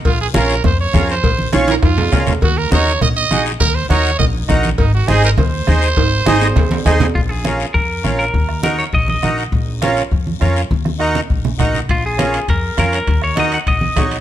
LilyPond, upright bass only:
\new Staff \with { instrumentName = "Upright bass" } { \clef bass \time 4/4 \key bes \minor \tempo 4 = 203 bes,,4 bes,,4 f,4 f,4 | bes,,4 bes,,4 f,4 des,8 ees,8 | ees,4 ees,4 bes,,4 bes,,4 | ees,4 ees,4 bes,,4 bes,,4 |
aes,,4 aes,,4 ees,4 ees,4 | aes,,4 aes,,4 ees,4 ees,4 | bes,,2 f,4 bes,,4 | ees,2 bes,,4 bes,,4 |
bes,,2 f,4 f,4 | ees,2 bes,,4 bes,,4 | bes,,2 f,4 f,4 | ees,2 bes,,4 bes,,4 | }